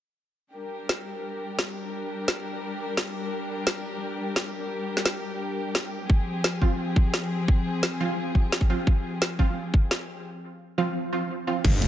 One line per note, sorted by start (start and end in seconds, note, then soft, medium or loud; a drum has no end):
0.55 6.06 G3 medium
0.55 6.06 D4 medium
0.55 10.22 G4 medium
0.55 6.06 A#4 medium
0.89 snare loud
1.59 snare loud
2.28 snare loud
2.97 snare loud
3.67 snare loud
4.36 snare loud
4.97 snare soft
5.06 snare loud
5.75 snare loud
6.10 10.22 F3 medium
6.10 10.22 C4 medium
6.10 10.22 G#4 medium
6.10 kick loud
6.44 snare loud
6.62 6.66 F3 medium
6.62 6.66 C4 medium
6.62 6.66 F4 medium
6.62 kick medium
6.96 kick loud
7.14 snare loud
7.48 kick loud
7.83 snare loud
8.00 8.68 F3 loud
8.00 8.68 C4 medium
8.00 8.68 F4 loud
8.35 kick medium
8.52 snare loud
8.61 kick loud
8.70 8.74 F3 medium
8.70 8.74 C4 medium
8.70 8.74 F4 medium
8.87 kick loud
9.22 snare loud
9.39 9.44 F3 medium
9.39 9.44 C4 medium
9.39 9.44 F4 medium
9.39 kick medium
9.74 kick loud
9.91 snare loud
10.78 11.11 F3 loud
10.78 11.11 C4 medium
10.78 11.11 F4 loud
11.12 11.20 F3 medium
11.12 11.20 C4 medium
11.12 11.20 F4 medium
11.47 11.52 F3 medium
11.47 11.52 C4 medium
11.47 11.52 F4 loud
11.65 11.80 G1 loud
11.65 kick loud
11.65 closed hi-hat medium
11.65 closed hi-hat loud
11.65 crash loud
11.65 impact medium
11.82 11.88 F1 medium
11.82 closed hi-hat medium
11.82 cabasa medium